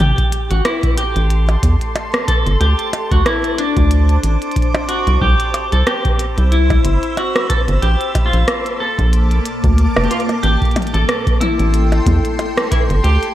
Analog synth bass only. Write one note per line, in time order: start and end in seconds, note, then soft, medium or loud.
0.00 0.13 A1 loud
0.51 0.61 A1 medium
1.16 1.57 A1 loud
1.63 1.76 E2 medium
2.46 2.57 G1 medium
2.61 2.74 D2 loud
3.12 3.22 D2 medium
3.77 4.17 D2 loud
4.24 4.37 A1 medium
5.07 5.18 C2 loud
5.22 5.35 C2 loud
5.73 5.83 C2 medium
6.38 6.78 C2 loud
6.85 6.98 G1 medium
7.68 7.79 G1 medium
7.82 7.96 A#1 loud
8.33 8.44 A#1 medium
8.99 9.39 A#1 medium
9.64 9.86 D2 loud
9.97 10.07 F1 medium
10.43 10.57 A1 loud
10.94 11.05 A1 medium
11.59 12.00 A1 loud
12.06 12.20 E2 medium
12.90 13.00 G1 medium
13.04 13.17 D2 loud